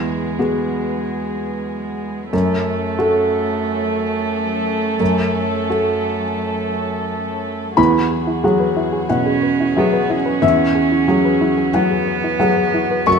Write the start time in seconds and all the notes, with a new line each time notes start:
Already playing: E2 F#3 G#3 B3 G#4
0.39 B3 F#4 G#4
2.33 F#2 F#3 A3 C#4 A4
2.98 A3 F#4 A4
5.00 F#2
5.70 A3 F#4 A4
7.77 E2 F#3 E4 F#4 G#4 B5
8.11 G#4
8.27 E4
8.44 F#3 F#4 G#4
8.60 B4
8.76 E4
8.93 G#4
9.09 B2 C#4 E4 F#5
9.26 G#4
9.43 B4
9.60 E4
9.76 F#3 B3 F#4 G#4 E5
9.93 B4
10.10 C#4 E4
10.26 B4
10.42 E2 E4 E5
10.75 G#4
10.92 E4
11.08 F#3 F#4 G#4
11.25 B4
11.41 E4
11.58 G#4
11.74 F#3 B3 E4 F#5
11.91 G#4
12.08 B4
12.24 E4
12.40 F#3 F#4 G#4 E5 F#5
12.57 B4
12.74 E4
12.91 B4
13.06 F#2 F#3 A3 F#4 A4 C#6